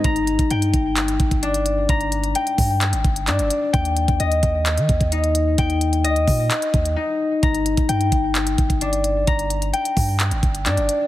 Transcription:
<<
  \new Staff \with { instrumentName = "Harp" } { \time 4/4 \key g \minor \tempo 4 = 130 bes''4 g''2 d'4 | bes''4 g''2 d'4 | g''4 ees''2 ees'4 | g''4 ees''2 ees'4 |
bes''4 g''2 d'4 | bes''4 g''2 d'4 | }
  \new Staff \with { instrumentName = "808-style bass" } { \clef bass \time 4/4 \key g \minor g,,8. g,,16 g,8 g,,4 g,,16 g,,4~ g,,16 | g,,4 r8 g,8. aes,,16 g,,8 g,16 g,,16 r8 | ees,8. ees,16 ees,8 ees,8. ees16 ees,16 ees,4~ ees,16 | ees,4 d,16 ees,16 bes,8 r8 ees,8 r4 |
g,,8. g,,16 g,8 g,,4 g,,16 g,,4~ g,,16 | g,,4 r8 g,8. aes,,16 g,,8 g,16 g,,16 r8 | }
  \new DrumStaff \with { instrumentName = "Drums" } \drummode { \time 4/4 <hh bd>16 hh16 hh16 <hh bd>16 hh16 hh16 <hh bd>8 <hc hh>16 hh16 <hh bd>16 <hh bd>16 hh16 hh16 hh8 | <hh bd>16 hh16 hh16 hh16 hh16 hh16 <hho bd>8 <hc hh>16 hh16 <hh bd>16 hh16 <hc hh>16 hh16 hh8 | <hh bd>16 hh16 hh16 <hh bd>16 hh16 hh16 <hh bd>8 <hc hh>16 hh16 <hh bd>16 <hh bd>16 hh16 hh16 hh8 | <hh bd>16 hh16 hh16 hh16 hh16 hh16 <hho bd>8 <hc hh>16 hh16 <hh bd>16 hh16 r4 |
<hh bd>16 hh16 hh16 <hh bd>16 hh16 hh16 <hh bd>8 <hc hh>16 hh16 <hh bd>16 <hh bd>16 hh16 hh16 hh8 | <hh bd>16 hh16 hh16 hh16 hh16 hh16 <hho bd>8 <hc hh>16 hh16 <hh bd>16 hh16 <hc hh>16 hh16 hh8 | }
>>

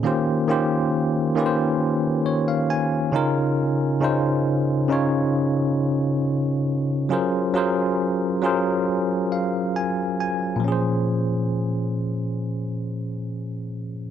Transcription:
\new Staff \with { instrumentName = "Tine electric piano" } { \time 4/4 \key bes \minor \tempo 4 = 68 << { r2 r8 des''16 f''16 aes''4 | r1 | r2 r8 f''8 aes''8 aes''8 | r1 | } \\ { <ees bes des' f' g' c''>8 <ees bes des' f' g' c''>4 <ees bes des' f' g' ces'' c''>4. r8 <des des' ees' f' bes'>8~ | <des des' ees' f' bes'>8 <des des' ees' f' c''>4 <des des' ees' f' des''>4. r4 | <ges des' f' aes' bes' c''>8 <ges des' f' aes' bes' c''>4 <ges des' f' aes' bes' c''>4. r4 | <bes, f des' aes' c''>1 | } >> }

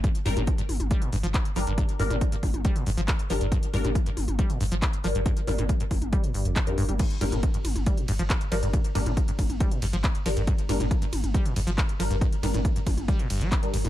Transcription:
<<
  \new Staff \with { instrumentName = "Synth stab" } { \time 4/4 \key g \minor \tempo 4 = 138 r8 <g d' bes'>16 r2 r8. <g d' bes'>8~ | <g d' bes'>8 <g d' bes'>16 r2 r8. <g d' bes'>8~ | <g d' bes'>8 <g d' bes'>16 r2 r8. <g d' bes'>8~ | <g d' bes'>8 <g d' bes'>16 r2 r8 <g d' bes'>16 r8 |
r8 <g d' bes'>16 r2 r8. <g d' bes'>8~ | <g d' bes'>8 <g d' bes'>16 r2 r8. <g d' bes'>8~ | <g d' bes'>8 <g d' bes'>16 r2 r8. <g d' bes'>8~ | <g d' bes'>8 <g d' bes'>16 r2 r8 <g d' bes'>16 r8 | }
  \new Staff \with { instrumentName = "Acid bass" } { \clef bass \time 4/4 \key g \minor g,16 r16 g,16 a,16 r16 g,16 r8 g16 bes,16 g,16 f16 r8 f16 g,16 | g,16 r16 g,16 a,16 r16 g,16 r8 g16 bes,16 g,16 f16 r8 f16 g,16 | g,16 r16 g,16 a,16 r16 g,16 r8 g16 bes,16 g,16 f16 r8 f16 g,16 | g,16 r16 g,16 a,16 r16 g,16 r8 g16 bes,16 g,16 f,16 g16 f,16 g,16 g16 |
g,16 r16 g,16 a,16 r16 g,16 r8 g16 bes,16 g,16 f16 r8 f16 g,16 | g,16 r16 g,16 a,16 r16 g,16 r8 g16 bes,16 g,16 f16 r8 f16 g,16 | g,16 r16 g,16 a,16 r16 g,16 r8 g16 bes,16 g,16 f16 r8 f16 g,16 | g,16 r16 g,16 a,16 r16 g,16 r8 g16 bes,16 g,16 g16 r8 g,16 a,16 | }
  \new Staff \with { instrumentName = "Sub bass" } { \clef bass \time 4/4 \key g \minor r8 g,,16 g,,16 r8 g,,16 g,,16 r8 g,,16 g,,16 r8 g,,16 g,,16 | r8 g,,16 g,,16 r8 g,,16 g,,16 r8 g,,16 g,,16 r8 g,,16 g,,16 | r8 g,,16 g,,16 r8 g,,16 g,,16 r8 g,,16 g,,16 r8 g,,16 g,,16 | r8 g,,16 g,,16 r8 g,,16 g,,16 r8 g,,16 g,,16 r8 g,,16 g,,16 |
r8 g,,16 g,,16 r8 g,,16 g,,16 r8 g,,16 g,,16 r8 g,,16 g,,16 | r8 g,,16 g,,16 r8 g,,16 g,,16 r8 g,,16 g,,16 r8 g,,16 g,,16 | r8 g,,16 g,,16 r8 g,,16 g,,16 r8 g,,16 g,,16 r8 g,,16 g,,16 | r8 g,,16 g,,16 r8 g,,16 g,,16 r8 g,,16 g,,16 r8 g,,16 g,,16 | }
  \new DrumStaff \with { instrumentName = "Drums" } \drummode { \time 4/4 <hh bd>16 hh16 <hho toml>16 <hh toml>16 <hh bd>16 hh16 <hho toml>16 <hh toml>16 <hh bd>16 hh16 hho16 hh16 <hc hh bd>16 hh16 hho16 hh16 | <hh bd>16 hh16 <hho toml>16 <hh toml>16 <hh bd>16 hh16 <hho bd toml>16 <hh toml>16 <hh bd>16 hh16 hho16 hh16 <hc hh bd>16 hh16 hho16 hh16 | <hh bd>16 hh16 <hho toml>16 <hh toml>16 <hh bd>16 hh16 <hho toml>16 <hh toml>16 <hh bd>16 hh16 hho16 hh16 <hc hh bd>16 hh16 hho16 hh16 | <hh bd>16 hh16 <hho toml>16 <hh toml>16 <hh bd>16 hh16 <hho bd toml>16 <hh toml>16 <hh bd>16 hh16 hho16 hh16 <hc hh bd>16 hh16 hho16 <hh toml>16 |
<cymc hh bd>16 hh16 <hho cymr toml>16 <hh toml>16 <hh bd>16 hh16 <hho cymr toml>16 <hh toml>16 <hh bd>16 hh16 <hho cymr>16 hh16 <hc hh bd>16 hh16 <hho cymr>16 hh16 | <hh bd>16 hh16 <hho cymr toml>16 <hh toml>16 <hh bd>16 hh16 <hho bd cymr toml>16 <hh toml>16 <hh bd>16 hh16 <hho cymr>16 hh16 <hc hh bd>16 hh16 <hho cymr>16 hh16 | <hh bd>16 hh16 <hho cymr toml>16 <hh toml>16 <hh bd>16 hh16 <hho cymr toml>16 <hh toml>16 <hh bd>16 hh16 <hho cymr>16 hh16 <hc hh bd>16 hh16 <hho cymr>16 hh16 | <hh bd>16 hh16 <hho cymr toml>16 <hh toml>16 <hh bd>16 hh16 <hho bd cymr toml>16 <hh toml>16 <hh bd>16 hh16 <hho cymr>16 hh16 <hc hh bd>16 hh16 <hho cymr>16 <hh toml>16 | }
>>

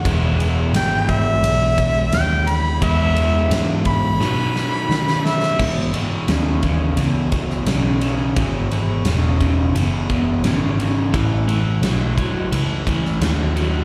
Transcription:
<<
  \new Staff \with { instrumentName = "Harmonica" } { \time 4/4 \key e \major \tempo 4 = 87 r4 g''8 e''4. g''8 b''8 | e''4 r8 b''2 e''8 | r1 | r1 |
r1 | }
  \new Staff \with { instrumentName = "Overdriven electric guitar" } { \clef bass \time 4/4 \key e \major <e gis b e'>1 | <e gis b e'>2 <b, dis fis b dis'>2 | <e, b,>8 <e, b,>8 <e, cis>8 <e, cis>8 <e, b,>8 <e, b,>8 <e, cis>8 <e, cis>8 | <e, b,>8 <e, b,>8 <e, cis>8 <e, cis>8 <e, b,>8 <e, b,>8 <e, cis>8 <e, cis>8 |
<a, e>8 <a, e>8 <a, fis>8 <a, fis>8 <a, e>8 <a, e>8 <a, fis>8 <a, fis>8 | }
  \new Staff \with { instrumentName = "Picked electric bass" } { \clef bass \time 4/4 \key e \major e,,4 gis,,4 b,,4 dis,4 | e,4 gis,4 b,4 dis4 | gis,8 r8 dis,4 cis,4 b,,4 | gis,,4 e,,4 fis,,4 gis,,4 |
a,,4 b,,8 r8 cis,8 r8 dis,4 | }
  \new DrumStaff \with { instrumentName = "Drums" } \drummode { \time 4/4 <bd cymr>8 cymr8 <cymr sn>8 <bd cymr>8 cymr8 <bd cymr>8 <cymr sn>8 cymr8 | <bd cymr>8 cymr8 <cymr sn>8 <bd cymr>8 sn8 sn8 sn16 sn16 sn16 sn16 | <cymc bd>8 cymr8 <cymr sn>8 <bd cymr>8 cymr8 <bd cymr>16 sn16 <cymr sn>8 cymr8 | <bd cymr>8 cymr8 <cymr sn>8 <bd cymr>8 cymr8 <bd cymr>8 <cymr sn>8 cymr8 |
<bd cymr>8 cymr8 <cymr sn>8 <bd cymr>8 cymr8 <bd cymr>16 sn16 <cymr sn>8 cymr8 | }
>>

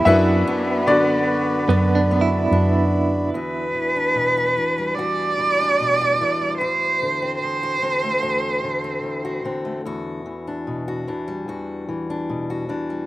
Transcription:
<<
  \new Staff \with { instrumentName = "Harmonium" } { \time 4/4 \key e \minor \tempo 4 = 74 <fis' d'' b''>1 | r1 | r1 | r1 | }
  \new Staff \with { instrumentName = "Cello" } { \time 4/4 \key e \minor b2.~ b8 r8 | b'2 d''2 | c''4 c''2~ c''8 r8 | r1 | }
  \new Staff \with { instrumentName = "Grand piano" } { \time 4/4 \key e \minor <e' b' e''>4 <d' fis' d''>2 r4 | r1 | r1 | r1 | }
  \new Staff \with { instrumentName = "Clean electric guitar" } { \time 4/4 \key e \minor e'8 r4. b16 d'16 e'4.~ | e'4 r2. | r1 | r1 | }
  \new Staff \with { instrumentName = "Steel-string acoustic guitar" } { \time 4/4 \key e \minor << { <b d' fis'>8 d'8 b4 d'8 b8 d'4 | fis'8. d'8 fis'16 d'16 g16 fis'8. d'8 fis'16 d'16 g16 | fis'8. c'8 fis'16 c'16 a16 fis'8. c'8 fis'16 c'16 a16 | fis'8. d'8 fis'16 d'16 g16 fis'8. d'8 fis'16 d'16 g16 | } \\ { fis,4 d4. fis,4. | e,8 e8 b,8 e8 e,8 e8 b,8 e8 | e,8 d8 e,8 d8 e,8 d8 e,8 d8 | e,8 e8 b,8 e8 e,8 e8 b,8 e8 | } >> }
  \new Staff \with { instrumentName = "Fretless electric bass" } { \clef bass \time 4/4 \key e \minor fis,8 r4. fis,4 fis,4 | r1 | r1 | r1 | }
>>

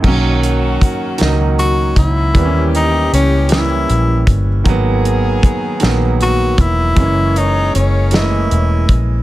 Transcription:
<<
  \new Staff \with { instrumentName = "Tenor saxophone" } { \time 6/8 \key b \major \tempo 4. = 52 r2 fis'8 e'8~ | e'8 dis'8 cis'8 e'4 r8 | r2 fis'8 e'8~ | e'8 dis'8 cis'8 e'4 r8 | }
  \new Staff \with { instrumentName = "Horn section" } { \time 6/8 \key b \major <dis cis' fis'>2~ <dis cis' fis'>8 r8 | <e cis' g'>2~ <e cis' g'>8 r8 | <dis b gis'>2~ <dis b gis'>8 r8 | <ais gis' cis''>2~ <ais gis' cis''>8 r8 | }
  \new Staff \with { instrumentName = "Grand piano" } { \time 6/8 \key b \major <dis fis ais cis'>4~ <dis fis ais cis'>16 r16 <dis fis ais dis'>4~ <dis fis ais dis'>16 r16 | <e g ais b cis'>4~ <e g ais b cis'>16 r16 <e g ais cis'>4~ <e g ais cis'>16 r16 | <dis fis ais b>4~ <dis fis ais b>16 r16 <dis fis ais b>4~ <dis fis ais b>16 r16 | <e gis ais cis'>4~ <e gis ais cis'>16 r16 <e gis a ais dis''>4~ <e gis a ais dis''>16 r16 | }
  \new Staff \with { instrumentName = "Fingered electric bass" } { \clef bass \time 6/8 \key b \major b,,4 r8 cis,4 cis,8 | dis,4 cis,4 ais,,8 g,,8 | gis,,4 r8 ais,,4 e,,8 | fis,,4 fis,,4 e,,8 ais,,8 | }
  \new DrumStaff \with { instrumentName = "Drums" } \drummode { \time 6/8 <cymc bd>8 hh8 <hh bd>8 <hh sn>8 hh8 <hh bd>8 | <hh bd>8 hh8 hh8 <hh sn>8 hh8 <hh bd>8 | <hh bd>8 hh8 <hh bd>8 <hh sn>8 hh8 <hh bd>8 | <hh bd>8 hh8 hh8 <hh sn>8 hh8 <hh bd>8 | }
>>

